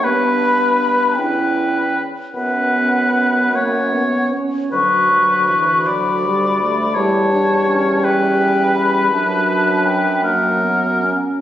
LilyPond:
<<
  \new Staff \with { instrumentName = "Flute" } { \time 6/8 \key b \minor \tempo 4. = 52 b''4. g''4 r8 | fis''2~ fis''8 r8 | cis'''4. b''4. | a''4. g''4 b''8 |
a''4 g''8 fis''4 r8 | }
  \new Staff \with { instrumentName = "Oboe" } { \time 6/8 \key b \minor b'4. b'4 r8 | b'4. cis''4 r8 | b'4. d''4. | cis''4. b'4.~ |
b'4. ais'4 r8 | }
  \new Staff \with { instrumentName = "Clarinet" } { \time 6/8 \key b \minor d'4. e'4 r8 | cis'4. cis'4 r8 | fis'2. | e'8 d'8 cis'2 |
d'4. ais8 b8 cis'8 | }
  \new Staff \with { instrumentName = "French horn" } { \clef bass \time 6/8 \key b \minor b4. cis'4 r8 | b4. ais8 b8 cis'8 | fis8 fis8 e8 fis8 g8 a8 | g2. |
fis4. fis4 r8 | }
  \new Staff \with { instrumentName = "Bassoon" } { \clef bass \time 6/8 \key b \minor g,4. e,4 r8 | fis,2~ fis,8 r8 | d,2. | e,2. |
fis,2~ fis,8 r8 | }
>>